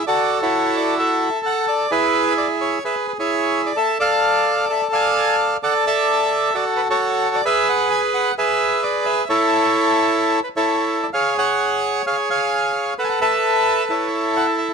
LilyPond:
\new Staff \with { instrumentName = "Bandoneon" } { \time 4/4 \key a \major \tempo 4 = 130 << { d''8. cis''8. d''8 e''4 fis''8 d''8 | b'4 d''8 cis''8 e''8 b'16 cis''4 d''16 | e''8 f''4. e''8 gis''4 r8 | fis''8 e''4. d''8 b'16 cis''4 d''16 |
e''8 fis''8 gis''8 fis''8 e''4 d''8 e''8 | cis''2~ cis''8 b'16 cis''4 d''16 | eis''8 fis''4. eis''8 gis''4 r8 | fis''32 gis''32 fis''16 e''4. cis''4 fis''8 e''8 | } \\ { <fis' a'>8. <e' fis'>4~ <e' fis'>16 a'2 | <e' gis'>2 <gis' b'>8. <e' gis'>4~ <e' gis'>16 | a'8 <a' d''>4. a'8 <d'' f''>4. | <a' d''>8 a'4. <fis' a'>8. <fis' a'>4~ <fis' a'>16 |
<gis' b'>2 <gis' b'>2 | <e' a'>2~ <e' a'>8 r16 <e' a'>4~ <e' a'>16 | <gis' cis''>8 cis''4. <gis' cis''>8 <cis'' eis''>4. | <a' b'>8 <a' b'>4. <e' a'>2 | } >> }